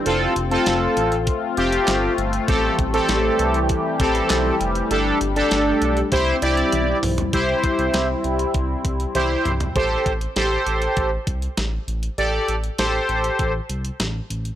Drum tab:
HH |x-xxx-xxx-xxx-xx|x-xxx-xxx-xxx-xx|x-xxx-xxx-xxx-ox|x-xxx-xxx-xxx-xx|
CP |------------x---|------------x---|----------------|----------------|
SD |----o-------o---|----o-------o---|----o-----------|----o-----------|
T1 |----------------|----------------|------------o---|------------o---|
T2 |----------------|----------------|--------------o-|--------------o-|
FT |----------------|----------------|---------------o|---------------o|
BD |--------o-------|o-o-----o-o-----|--------o-------|o-o-----o-o-----|

HH |x-xxx-xxx-xxx-xx|x-xxx-xxx-xxx-xx|
CP |----------------|----------------|
SD |----o-------o---|----o-------o---|
T1 |----------------|----------------|
T2 |----------------|----------------|
FT |----------------|----------------|
BD |o-o-----o-o-----|--------o-------|